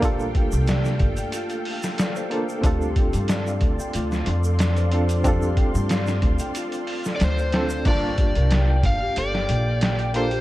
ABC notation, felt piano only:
X:1
M:4/4
L:1/16
Q:1/4=92
K:Gm
V:1 name="Felt piano"
G G, g2 d3 g F3 A d c c2 | G G, g2 d3 g F3 A d c c2 | G G, g2 d3 g F3 A d c c2 | z2 G B g g z G A z g3 g G G |]